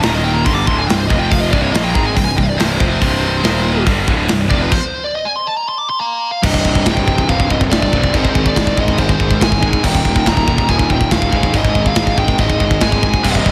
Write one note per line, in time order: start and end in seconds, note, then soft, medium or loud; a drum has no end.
0.03 0.43 D#1 medium
0.03 0.45 D#2 medium
0.03 0.45 A#2 loud
0.03 0.46 D#3 loud
0.03 0.14 A#5 loud
0.03 snare loud
0.03 open hi-hat medium
0.14 0.24 D#5 medium
0.24 0.35 G5 medium
0.33 0.45 A#5 medium
0.45 0.66 G1 medium
0.45 0.67 G2 medium
0.45 0.67 D3 medium
0.45 0.67 G3 medium
0.45 0.54 C6 medium
0.45 kick loud
0.45 open hi-hat medium
0.54 0.67 D6 loud
0.67 0.87 D1 loud
0.67 0.88 D2 medium
0.67 0.88 A2 loud
0.67 0.89 D3 medium
0.67 0.77 C6 loud
0.67 kick medium
0.78 0.87 G#5 medium
0.88 1.09 C1 medium
0.88 1.09 C2 medium
0.88 1.06 G2 medium
0.88 0.99 G5 medium
0.88 snare loud
0.88 open hi-hat medium
0.96 1.08 C5 medium
1.07 1.50 F1 medium
1.07 1.51 F2 loud
1.07 1.51 C3 medium
1.07 1.52 F3 loud
1.07 1.19 D#5 medium
1.07 kick loud
1.19 1.30 G5 medium
1.30 1.41 F5 medium
1.30 kick loud
1.30 open hi-hat medium
1.41 1.51 D#5 medium
1.51 1.73 C1 medium
1.51 1.72 C2 medium
1.51 1.73 G2 medium
1.51 1.73 C3 medium
1.51 1.61 D5 medium
1.51 kick loud
1.62 1.72 C#5 medium
1.72 1.94 A#1 medium
1.72 1.94 A#2 medium
1.72 1.94 F3 loud
1.72 1.95 A#3 loud
1.72 1.84 D#5 medium
1.72 snare loud
1.72 open hi-hat medium
1.84 1.95 G5 medium
1.94 2.15 G#1 medium
1.94 2.16 G#2 medium
1.94 2.16 D#3 medium
1.94 2.16 G#3 loud
1.94 2.05 A#5 loud
1.94 kick loud
2.04 2.15 G#5 medium
2.16 2.37 C1 medium
2.16 2.34 C2 medium
2.16 2.34 G2 medium
2.16 2.25 G5 medium
2.16 kick medium
2.16 open hi-hat medium
2.25 2.36 G#5 loud
2.37 2.58 C1 medium
2.37 2.55 C2 medium
2.37 2.55 G2 medium
2.37 2.44 G5 medium
2.37 kick medium
2.43 2.49 F5 medium
2.49 2.58 D5 medium
2.57 2.79 C1 medium
2.57 2.79 C2 medium
2.57 2.80 G2 medium
2.57 2.80 C3 medium
2.57 3.82 C5 medium
2.57 snare loud
2.57 open hi-hat medium
2.80 3.00 F1 medium
2.80 3.01 F2 medium
2.80 3.01 C3 loud
2.80 3.02 F3 loud
2.80 kick loud
3.01 3.42 C1 medium
3.01 3.43 C2 medium
3.01 3.44 G2 loud
3.01 3.44 C3 loud
3.01 kick loud
3.01 open hi-hat medium
3.44 3.84 D#1 medium
3.44 3.86 D#2 medium
3.44 3.87 A#2 medium
3.44 3.87 D#3 loud
3.44 snare medium
3.44 open hi-hat soft
3.86 4.07 G1 medium
3.86 4.08 G2 medium
3.86 4.08 D3 loud
3.86 4.08 G3 loud
3.86 kick loud
3.86 open hi-hat medium
4.08 4.28 D1 loud
4.08 4.29 D2 medium
4.08 4.29 A2 loud
4.08 4.30 D3 loud
4.08 kick loud
4.28 4.50 C1 medium
4.28 4.47 C2 medium
4.28 4.47 G2 medium
4.28 snare loud
4.28 open hi-hat medium
4.50 4.71 F1 medium
4.50 4.71 F2 loud
4.50 4.72 C3 loud
4.50 4.72 F3 loud
4.50 4.61 D5 medium
4.50 kick loud
4.61 4.71 B4 medium
4.71 5.02 C5 medium
4.71 kick loud
4.71 crash loud
5.04 5.15 D5 medium
5.15 5.26 D#5 medium
5.25 5.36 G#5 medium
5.36 5.46 C6 loud
5.47 5.57 A5 medium
5.57 5.68 A#5 loud
5.69 5.78 C6 loud
5.78 5.89 D6 loud
5.90 6.00 C6 loud
6.00 6.40 F5 medium
6.00 6.30 A#5 medium
6.43 6.60 C1 medium
6.43 6.85 C2 medium
6.43 6.86 G2 loud
6.43 6.86 C3 loud
6.43 6.84 D#5 medium
6.43 kick loud
6.43 crash loud
6.43 china medium
6.54 kick medium
6.65 6.81 C1 loud
6.65 kick medium
6.75 kick medium
6.86 7.18 C1 medium
6.86 7.06 C2 medium
6.86 7.07 G2 medium
6.86 7.07 C3 medium
6.86 7.29 G5 medium
6.86 kick medium
6.86 snare loud
6.86 china medium
6.97 kick medium
7.07 7.27 C2 medium
7.07 7.28 G2 medium
7.07 7.28 C3 medium
7.07 kick loud
7.18 kick medium
7.28 7.45 C1 medium
7.28 7.70 C2 medium
7.28 7.71 G2 loud
7.28 7.72 C3 loud
7.28 7.49 F5 loud
7.28 kick medium
7.28 china medium
7.40 kick medium
7.50 7.66 C1 medium
7.50 7.57 D#5 medium
7.50 kick medium
7.61 kick medium
7.71 7.87 C1 medium
7.71 7.92 C2 medium
7.71 7.92 G2 medium
7.71 7.93 C3 medium
7.71 8.15 D5 medium
7.71 kick medium
7.71 snare loud
7.71 china medium
7.82 kick medium
7.93 8.09 C1 medium
7.93 8.13 C2 loud
7.93 8.13 G2 loud
7.93 8.13 C3 loud
7.93 kick loud
8.04 kick medium
8.14 8.46 G#1 loud
8.14 8.55 G#2 loud
8.14 8.56 D#3 loud
8.14 8.56 G#3 loud
8.14 8.48 C5 medium
8.14 kick loud
8.14 china medium
8.25 kick medium
8.35 kick loud
8.46 8.77 D5 medium
8.46 kick medium
8.56 8.73 G#1 medium
8.56 8.77 G#2 medium
8.56 8.78 D#3 loud
8.56 8.78 G#3 loud
8.56 kick medium
8.56 snare loud
8.56 china medium
8.67 kick medium
8.77 8.94 G#1 loud
8.77 8.97 G#2 medium
8.77 8.98 D#3 medium
8.77 8.99 G#3 medium
8.77 8.99 D#5 medium
8.77 kick medium
8.88 kick loud
8.98 9.14 G#1 loud
8.98 9.40 G#2 loud
8.98 9.40 D#3 loud
8.98 9.41 G#3 loud
8.98 9.39 C5 medium
8.98 kick medium
8.98 china medium
9.09 kick loud
9.20 9.36 G#1 medium
9.20 kick medium
9.31 kick medium
9.41 9.73 G#1 loud
9.41 9.60 G#2 medium
9.41 9.61 D#3 medium
9.41 9.62 G#3 medium
9.41 9.82 G#5 medium
9.41 kick medium
9.41 snare loud
9.41 china medium
9.52 kick medium
9.62 9.82 G#2 medium
9.62 9.82 D#3 loud
9.62 9.83 G#3 loud
9.62 kick medium
9.73 kick medium
9.83 10.00 D#1 loud
9.83 10.24 D#2 loud
9.83 10.24 A#2 loud
9.83 10.25 D#3 loud
9.83 10.28 G5 loud
9.83 kick medium
9.83 china medium
9.83 crash loud
9.95 kick medium
10.05 10.21 D#1 loud
10.05 kick medium
10.16 kick medium
10.25 10.58 D#1 loud
10.25 10.46 D#2 medium
10.25 10.47 A#2 loud
10.25 10.47 D#3 loud
10.25 10.71 A#5 loud
10.25 kick medium
10.25 snare loud
10.25 china medium
10.37 kick medium
10.47 10.67 D#2 medium
10.47 10.67 A#2 medium
10.47 10.68 D#3 medium
10.47 kick loud
10.58 kick loud
10.68 10.85 D#1 medium
10.68 11.09 D#2 loud
10.68 11.09 A#2 loud
10.68 11.10 D#3 loud
10.68 10.91 G#5 loud
10.68 kick medium
10.68 china medium
10.79 kick loud
10.90 11.06 D#1 loud
10.90 11.12 G5 loud
10.90 kick medium
11.01 kick medium
11.10 11.28 D#1 medium
11.10 11.31 D#2 medium
11.10 11.31 A#2 medium
11.10 11.31 D#3 medium
11.10 11.52 F5 medium
11.10 kick loud
11.10 snare loud
11.10 china medium
11.22 kick medium
11.31 11.49 G#1 medium
11.31 11.52 G#2 loud
11.31 11.53 D#3 loud
11.31 11.53 G#3 loud
11.31 kick medium
11.43 kick medium
11.53 11.86 G#1 loud
11.53 11.95 G#2 loud
11.53 11.96 D#3 loud
11.53 11.96 G#3 loud
11.53 11.88 D#5 loud
11.53 kick medium
11.53 china medium
11.65 kick medium
11.75 kick medium
11.86 12.18 F5 loud
11.86 kick medium
11.95 12.12 G#1 loud
11.95 12.16 G#2 medium
11.95 12.17 D#3 medium
11.95 12.17 G#3 loud
11.95 kick medium
11.95 snare loud
11.95 china medium
12.07 kick medium
12.17 12.34 G#1 loud
12.17 12.38 G#2 medium
12.17 12.38 D#3 loud
12.17 12.39 G#3 medium
12.17 12.40 G5 medium
12.17 kick loud
12.28 kick medium
12.38 12.55 G#1 medium
12.38 12.79 G#2 medium
12.38 12.80 D#3 medium
12.38 12.81 G#3 loud
12.38 12.79 D#5 loud
12.38 kick loud
12.38 china medium
12.50 kick medium
12.60 12.76 G#1 medium
12.60 kick medium
12.71 kick medium
12.80 13.14 G#1 medium
12.80 13.01 G#2 medium
12.80 13.02 D#3 medium
12.80 13.03 G#3 medium
12.80 13.22 G#5 loud
12.80 kick loud
12.80 snare loud
12.80 china medium
12.92 kick medium
13.02 13.23 G#2 loud
13.02 13.23 D#3 loud
13.02 13.24 G#3 loud
13.02 kick medium
13.14 kick medium
13.24 13.41 C1 medium
13.24 13.52 C2 loud
13.24 13.52 G2 medium
13.24 13.52 C3 loud
13.24 13.52 D#5 medium
13.24 kick medium
13.24 china medium
13.24 crash loud
13.35 kick medium
13.46 13.52 C1 loud
13.46 kick medium